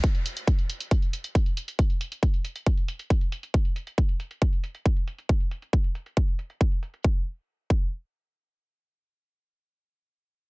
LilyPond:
\new DrumStaff \with { instrumentName = "Drums" } \drummode { \time 4/4 \tempo 4 = 137 <hh bd>16 hh16 hh16 hh16 <hh bd>16 hh16 hh16 hh16 <hh bd>16 hh16 hh16 hh16 <hh bd>16 hh16 hh16 hh16 | <hh bd>16 hh16 hh16 hh16 <hh bd>16 hh16 hh16 hh16 <hh bd>16 hh16 hh16 hh16 <hh bd>16 hh16 hh16 hh16 | <hh bd>16 hh16 hh16 hh16 <hh bd>16 hh16 hh16 hh16 <hh bd>16 hh16 hh16 hh16 <hh bd>16 hh16 hh16 hh16 | <hh bd>16 hh16 hh16 hh16 <hh bd>16 hh16 hh16 hh16 bd16 hh16 hh16 hh16 bd16 hh16 hh16 hh16 |
bd4 r8 bd8 r4 r4 | r4 r4 r4 r4 | }